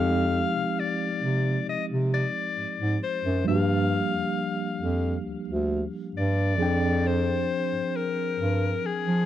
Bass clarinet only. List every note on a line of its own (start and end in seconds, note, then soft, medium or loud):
0.00 0.42 F2 loud
0.55 0.64 C3 medium
1.23 1.58 C3 medium
1.67 1.76 C3 soft
1.90 2.25 C3 medium
2.57 2.66 G#2 medium
2.79 2.97 G#2 medium
3.24 3.42 F#2 loud
3.47 4.00 G2 loud
4.14 4.23 F2 medium
4.81 5.17 F2 medium
5.26 5.35 D2 soft
5.48 5.84 D2 loud
6.15 6.61 G2 loud
6.60 7.49 F2 loud
7.72 7.81 G2 medium
8.39 8.75 G2 loud
8.84 8.93 F3 medium
9.06 9.26 F3 loud